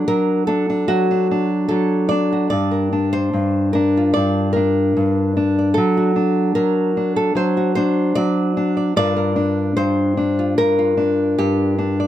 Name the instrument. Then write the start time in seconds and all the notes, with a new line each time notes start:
nylon-string guitar
Already playing: D4 F#4
0.08 F#3 A#4
0.47 D4 A4
0.70 D4
0.88 F#3 F#4
1.11 D4
1.31 D4
1.69 F#3 A4
2.09 D4 D5
2.33 F#4
2.50 G2 D5
2.71 A#4
2.93 D4
3.13 C5
3.33 G2
3.73 D4 A#4
3.97 F4
4.14 G2 D5
4.53 D4 A#4
4.97 G2
5.37 D4
5.59 D5
5.74 F#3 A4
5.97 F#4
6.16 D4
6.55 F#3 A#4
6.97 D4
7.16 A4
7.35 F#3 C5
7.57 F#4
7.75 D4 C5
8.15 F#3 D5
8.57 D4
8.77 D5
8.96 G2 D4 F4 A#4 D5
9.16 A#4
9.36 D4
9.76 G2 C5
10.17 D4
10.39 F4
10.58 G2 A#4
10.79 F4
10.97 D4
11.39 G2 G4
11.78 D4
12.00 D5